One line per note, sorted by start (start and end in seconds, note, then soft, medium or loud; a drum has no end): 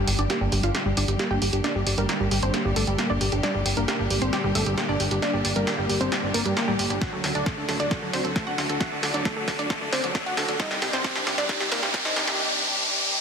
0.00 6.98 A#2 medium
0.00 10.56 D3 medium
0.00 6.98 G3 medium
0.00 10.56 D4 medium
0.00 6.98 G4 medium
0.00 riser medium
0.07 0.15 G1 medium
0.07 0.15 G3 medium
0.07 0.16 G4 medium
0.07 open hi-hat loud
0.19 0.26 G1 medium
0.19 0.24 D4 medium
0.19 0.28 D4 medium
0.19 0.28 D5 medium
0.19 closed hi-hat medium
0.30 0.33 A#3 loud
0.30 0.39 G4 medium
0.30 snare soft
0.30 closed hi-hat medium
0.41 0.49 G1 medium
0.41 0.46 D4 medium
0.41 0.50 G4 medium
0.52 0.60 G1 medium
0.52 0.57 G3 medium
0.52 0.61 G4 medium
0.52 open hi-hat medium
0.63 0.71 G1 medium
0.63 0.68 D4 medium
0.63 0.72 F4 medium
0.63 0.72 F5 medium
0.63 closed hi-hat medium
0.75 0.82 G4 loud
0.75 0.84 G4 medium
0.75 snare soft
0.75 closed hi-hat medium
0.86 0.94 G1 medium
0.86 0.91 G3 loud
0.86 0.95 G4 medium
0.97 1.05 G1 loud
0.97 1.06 D4 medium
0.97 1.00 G4 medium
0.97 1.06 D5 medium
0.97 open hi-hat loud
1.08 1.16 G1 medium
1.08 1.13 G3 medium
1.08 1.17 G4 medium
1.08 closed hi-hat medium
1.19 1.22 A#3 medium
1.19 1.28 G4 medium
1.19 snare soft
1.19 closed hi-hat medium
1.31 1.38 G1 medium
1.31 1.36 D4 medium
1.31 1.40 G4 medium
1.31 1.40 G5 medium
1.42 1.50 G1 medium
1.42 1.47 G4 medium
1.42 1.51 G4 medium
1.42 open hi-hat medium
1.53 1.61 G1 medium
1.53 1.58 D4 medium
1.53 1.62 G4 medium
1.53 closed hi-hat medium
1.64 1.72 A#3 medium
1.64 1.73 D4 medium
1.64 1.73 D5 medium
1.64 snare soft
1.64 closed hi-hat medium
1.75 1.83 G1 medium
1.75 1.84 G4 medium
1.75 1.80 D5 medium
1.87 1.94 G1 loud
1.87 1.96 G4 medium
1.87 1.92 D5 loud
1.87 open hi-hat loud
1.98 2.06 G1 medium
1.98 2.03 G3 loud
1.98 2.07 A#3 medium
1.98 2.07 A#4 medium
1.98 closed hi-hat medium
2.09 2.12 A#3 loud
2.09 2.18 G4 medium
2.09 snare medium
2.09 closed hi-hat medium
2.20 2.28 G1 medium
2.20 2.25 G3 loud
2.20 2.29 G4 medium
2.31 2.39 G1 loud
2.31 2.36 G4 medium
2.31 2.40 G4 medium
2.31 open hi-hat medium
2.43 2.50 G1 medium
2.43 2.52 C4 medium
2.43 2.48 D4 medium
2.43 2.52 C5 medium
2.43 closed hi-hat medium
2.54 2.61 A#3 medium
2.54 2.63 G4 medium
2.54 snare medium
2.54 closed hi-hat medium
2.65 2.73 G1 medium
2.65 2.74 G4 medium
2.65 2.70 D5 medium
2.76 2.84 G1 loud
2.76 2.85 A3 medium
2.76 2.85 A4 medium
2.76 2.81 D5 loud
2.76 open hi-hat loud
2.87 2.95 G1 medium
2.87 2.92 G3 loud
2.87 2.96 G4 medium
2.87 closed hi-hat medium
2.98 3.02 A#3 loud
2.98 3.08 G4 medium
2.98 snare medium
2.98 closed hi-hat medium
3.10 3.17 G1 medium
3.10 3.19 D4 medium
3.10 3.15 D5 medium
3.10 3.19 D5 medium
3.21 3.29 G1 loud
3.21 3.30 G4 medium
3.21 3.26 G4 medium
3.21 open hi-hat medium
3.32 3.40 G1 medium
3.32 3.37 D4 medium
3.32 3.41 G4 medium
3.32 closed hi-hat medium
3.43 3.51 G3 loud
3.43 3.52 D4 medium
3.43 3.52 D5 loud
3.43 snare medium
3.43 closed hi-hat medium
3.54 3.62 G1 medium
3.54 3.60 G3 loud
3.54 3.63 G4 medium
3.66 3.73 G1 loud
3.66 3.73 G3 medium
3.66 3.75 G4 medium
3.66 open hi-hat loud
3.77 3.85 G1 medium
3.77 3.86 A#3 medium
3.77 3.82 D4 medium
3.77 3.86 A#4 medium
3.77 closed hi-hat medium
3.88 3.91 A#3 loud
3.88 3.97 G4 medium
3.88 snare medium
3.88 closed hi-hat medium
3.99 4.07 G1 medium
3.99 4.04 D4 medium
3.99 4.08 G4 medium
4.10 4.18 G1 medium
4.10 4.16 G3 medium
4.10 4.19 G4 medium
4.10 open hi-hat medium
4.22 4.29 G1 medium
4.22 4.31 C4 medium
4.22 4.27 D4 medium
4.22 4.31 C5 loud
4.22 closed hi-hat medium
4.33 4.40 G4 loud
4.33 4.42 G4 medium
4.33 snare medium
4.33 closed hi-hat medium
4.44 4.52 G1 medium
4.44 4.49 G3 loud
4.44 4.53 G4 medium
4.55 4.63 G1 loud
4.55 4.64 A3 medium
4.55 4.58 G4 medium
4.55 4.64 A4 medium
4.55 open hi-hat loud
4.66 4.74 G1 medium
4.66 4.71 G3 medium
4.66 4.75 G4 medium
4.66 closed hi-hat medium
4.78 4.81 A#3 loud
4.78 4.87 G4 medium
4.78 snare medium
4.78 closed hi-hat medium
4.89 4.97 G1 medium
4.89 4.94 D4 medium
4.89 4.98 D4 medium
4.89 4.98 D5 medium
5.00 5.08 G1 loud
5.00 5.05 G4 medium
5.00 5.09 G4 medium
5.00 open hi-hat medium
5.11 5.19 G1 medium
5.11 5.16 D4 medium
5.11 5.20 G4 medium
5.11 closed hi-hat medium
5.22 5.30 A#3 medium
5.22 5.31 D4 medium
5.22 5.31 D5 loud
5.22 snare medium
5.22 closed hi-hat medium
5.33 5.41 G1 medium
5.33 5.43 G4 medium
5.33 5.39 D5 medium
5.45 5.52 G1 loud
5.45 5.54 G4 medium
5.45 5.50 D5 loud
5.45 open hi-hat loud
5.56 5.64 G1 medium
5.56 5.61 G3 loud
5.56 5.65 A#3 medium
5.56 5.65 A#4 medium
5.56 closed hi-hat medium
5.67 5.70 A#3 loud
5.67 5.76 G4 medium
5.67 snare medium
5.67 closed hi-hat medium
5.78 5.86 G1 medium
5.78 5.83 G3 loud
5.78 5.87 G4 medium
5.89 5.97 G1 medium
5.89 5.98 G4 medium
5.89 5.95 G4 medium
5.89 open hi-hat medium
6.01 6.08 G1 medium
6.01 6.10 C4 medium
6.01 6.06 D4 medium
6.01 6.10 C5 medium
6.01 closed hi-hat medium
6.12 6.19 A#3 medium
6.12 6.21 G4 medium
6.12 snare medium
6.12 closed hi-hat medium
6.23 6.31 G1 medium
6.23 6.32 G4 medium
6.23 6.28 D5 medium
6.34 6.42 G1 loud
6.34 6.43 A#3 medium
6.34 6.43 A#4 medium
6.34 6.39 D5 loud
6.34 open hi-hat loud
6.46 6.53 G2 medium
6.46 6.51 G3 loud
6.46 6.54 G4 medium
6.46 closed hi-hat medium
6.57 6.60 A#3 loud
6.57 6.66 G4 medium
6.57 snare medium
6.57 closed hi-hat medium
6.68 6.76 A1 medium
6.68 6.77 G3 medium
6.68 6.77 G4 medium
6.68 6.73 D5 medium
6.79 6.87 G1 loud
6.79 6.88 G4 medium
6.79 6.84 G4 medium
6.79 open hi-hat medium
6.90 6.98 G1 medium
6.90 6.95 D4 medium
6.90 6.99 G4 medium
6.90 closed hi-hat medium
7.01 10.56 A2 medium
7.01 10.56 F#3 medium
7.01 7.09 F#3 medium
7.01 7.10 F#4 medium
7.01 10.56 F#4 medium
7.01 7.10 F#5 medium
7.01 kick loud
7.01 snare medium
7.01 closed hi-hat medium
7.13 7.20 D2 medium
7.13 7.18 F#3 loud
7.13 7.22 A4 medium
7.24 7.32 D2 loud
7.24 7.31 F#3 medium
7.24 7.33 A4 medium
7.24 snare medium
7.24 open hi-hat loud
7.35 7.43 D2 medium
7.35 7.40 D4 medium
7.35 7.44 D4 medium
7.35 7.44 D5 loud
7.35 closed hi-hat medium
7.46 7.49 A3 loud
7.46 kick loud
7.46 snare medium
7.46 closed hi-hat medium
7.57 7.65 D2 medium
7.57 7.63 D4 medium
7.57 7.66 A4 medium
7.69 7.76 D2 medium
7.69 7.74 F#3 medium
7.69 7.78 A4 medium
7.69 snare medium
7.69 open hi-hat medium
7.80 7.88 D2 medium
7.80 7.89 D4 medium
7.80 7.85 D4 medium
7.80 7.89 D5 loud
7.80 closed hi-hat medium
7.91 7.99 F#4 loud
7.91 8.00 A4 medium
7.91 kick loud
7.91 snare medium
7.91 closed hi-hat medium
8.02 8.10 D2 medium
8.02 8.07 F#3 loud
8.02 8.11 A4 medium
8.13 8.21 D2 loud
8.13 8.22 C4 medium
8.13 8.17 F#4 medium
8.13 8.22 C5 medium
8.13 snare medium
8.13 open hi-hat loud
8.25 8.32 D2 medium
8.25 8.30 F#3 medium
8.25 8.34 A4 medium
8.25 closed hi-hat medium
8.36 8.39 A3 loud
8.36 8.45 A4 medium
8.36 kick loud
8.36 snare medium
8.36 closed hi-hat medium
8.47 8.55 D2 medium
8.47 8.52 D4 medium
8.47 8.56 F#4 medium
8.47 8.56 F#5 medium
8.58 8.66 D2 loud
8.58 8.63 F#4 medium
8.58 8.67 A4 medium
8.58 snare medium
8.58 open hi-hat medium
8.69 8.77 D2 medium
8.69 8.75 D4 medium
8.69 8.78 A4 medium
8.69 closed hi-hat medium
8.80 8.88 A3 medium
8.80 8.89 F#4 medium
8.80 8.89 F#5 loud
8.80 kick loud
8.80 snare medium
8.80 closed hi-hat medium
8.92 9.00 D2 medium
8.92 9.01 A4 medium
8.92 8.97 D5 medium
9.03 9.11 D2 loud
9.03 9.12 A4 medium
9.03 9.08 D5 loud
9.03 snare medium
9.03 open hi-hat loud
9.14 9.22 D2 loud
9.14 9.19 F#3 loud
9.14 9.23 D4 medium
9.14 9.23 D5 medium
9.14 closed hi-hat medium
9.25 9.28 A3 loud
9.25 9.34 A4 medium
9.25 kick loud
9.25 snare medium
9.25 closed hi-hat medium
9.36 9.44 D2 medium
9.36 9.42 F#3 loud
9.36 9.45 A4 medium
9.48 9.55 D2 loud
9.48 9.53 F#4 medium
9.48 9.57 A4 medium
9.48 kick medium
9.48 snare medium
9.48 open hi-hat medium
9.59 9.67 D2 medium
9.59 9.68 D4 medium
9.59 9.64 D4 medium
9.59 9.68 D5 loud
9.59 closed hi-hat medium
9.70 9.78 A3 medium
9.70 9.79 A4 medium
9.70 kick loud
9.70 snare medium
9.70 closed hi-hat medium
9.81 9.89 D2 medium
9.81 9.90 A4 medium
9.81 9.86 D5 medium
9.93 10.00 D2 loud
9.93 10.02 C4 medium
9.93 10.01 C5 loud
9.93 9.98 D5 loud
9.93 snare medium
9.93 open hi-hat loud
10.04 10.11 D2 medium
10.04 10.09 F#3 loud
10.04 10.13 A4 medium
10.04 closed hi-hat medium
10.15 10.18 A3 loud
10.15 10.24 A4 medium
10.15 kick loud
10.15 snare medium
10.15 closed hi-hat medium
10.26 10.34 D2 medium
10.26 10.35 F#4 medium
10.26 10.31 D5 medium
10.26 10.35 F#5 medium
10.37 10.45 D2 loud
10.37 10.42 F#4 medium
10.37 10.46 A4 medium
10.37 snare medium
10.37 open hi-hat medium
10.48 10.56 D2 loud
10.48 10.54 D4 medium
10.48 10.58 A4 medium
10.48 closed hi-hat medium
10.59 13.21 C3 medium
10.59 13.21 D#3 medium
10.59 13.21 G3 medium
10.59 10.67 G3 loud
10.59 13.21 D4 medium
10.59 10.69 D#4 medium
10.59 13.21 G4 medium
10.59 10.69 D#5 loud
10.59 kick loud
10.59 snare medium
10.59 closed hi-hat medium
10.71 10.79 C2 medium
10.71 10.76 G3 loud
10.71 10.80 G4 medium
10.71 snare medium
10.82 10.90 C2 loud
10.82 10.90 G3 medium
10.82 10.91 G4 medium
10.82 snare medium
10.82 open hi-hat loud
10.93 11.01 C2 medium
10.93 11.02 C4 medium
10.93 10.98 D4 medium
10.93 11.02 C5 loud
10.93 snare medium
10.93 closed hi-hat medium
11.04 11.08 C4 loud
11.04 11.13 G4 medium
11.04 kick loud
11.04 snare medium
11.04 closed hi-hat medium
11.16 11.23 C2 medium
11.16 11.21 D4 medium
11.16 11.25 G4 medium
11.16 snare medium
11.27 11.35 C2 loud
11.27 11.32 G3 medium
11.27 11.36 G4 medium
11.27 snare medium
11.27 open hi-hat medium
11.38 11.46 C2 medium
11.38 11.47 D4 medium
11.38 11.43 D4 medium
11.38 11.47 D5 medium
11.38 snare medium
11.38 closed hi-hat medium
11.49 11.57 D#4 loud
11.49 11.58 G4 medium
11.49 kick loud
11.49 snare medium
11.49 closed hi-hat medium
11.60 11.68 C2 medium
11.60 11.65 G3 loud
11.60 11.69 G4 medium
11.60 snare medium
11.71 11.79 C2 loud
11.71 11.81 A#3 medium
11.71 11.75 D#4 medium
11.71 11.81 A#4 medium
11.71 snare loud
11.71 open hi-hat loud
11.83 11.91 C2 medium
11.83 11.88 G3 medium
11.83 11.92 G4 medium
11.83 snare medium
11.83 closed hi-hat medium
11.94 11.97 C4 loud
11.94 12.03 G4 medium
11.94 kick loud
11.94 snare loud
11.94 closed hi-hat medium
12.05 12.13 C2 medium
12.05 12.10 D4 medium
12.05 12.14 D#4 medium
12.05 12.14 D#5 loud
12.05 snare medium
12.16 12.24 C2 loud
12.16 12.21 D#4 medium
12.16 12.25 G4 medium
12.16 snare loud
12.16 open hi-hat medium
12.28 12.35 C2 medium
12.28 12.33 D4 medium
12.28 12.37 G4 medium
12.28 snare medium
12.28 closed hi-hat medium